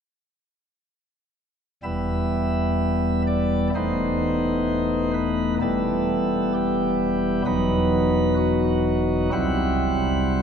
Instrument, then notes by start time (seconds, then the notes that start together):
pipe organ
1.83 E1 E2 G3 B3 E4 E5
3.27 D5
3.75 E1 E2 A3 B3 D#4 C5
5.14 B4
5.61 E1 E2 G3 B3 E4 A4
6.54 G4
7.46 E1 E2 F#3 B3 D#4 B4
8.36 F#4
9.32 C2 C3 G3 C4 E4 F#5